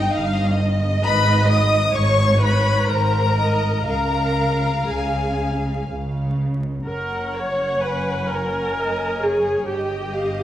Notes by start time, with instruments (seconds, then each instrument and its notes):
Already playing: viola section D#4, violin section D#5 G5
0.13 double bass section G1, cello section G2, violin section F5
0.25 violin section F5
0.34 violin section D#5
0.44 violin section C#5
0.51 violin section D#5
0.59 violin section D#5
1.04 double bass section G#1, cello section G#2, viola section B4, violin section B5
1.49 viola section D#5, violin section D#6
1.93 double bass section G#1, cello section G#2, violin section C#5 C#6, viola section C#5
2.39 viola section B4, violin section B5
2.87 double bass section G#1, cello section G#2, viola section A#4, violin section C5 A#5
3.37 violin section D#5
3.87 double bass section C#2, cello section C#3, viola section A#4, violin section F5 A#5
4.88 double bass section C#2, cello section C#3, viola section G#4, violin section G#5
5.89 double bass section C#2, cello section C#3
6.87 double bass section F#1, cello section F#2, viola section A#4, violin section C#5 F#5
7.35 viola section C#5
7.82 viola section B4, violin section G#5
8.28 viola section A#4
8.74 violin section C#5 D#5
9.21 viola section G#4, violin section C#5
9.67 double bass section G1, cello section G2, viola section G4, violin section D#5 G5
10.15 violin section F5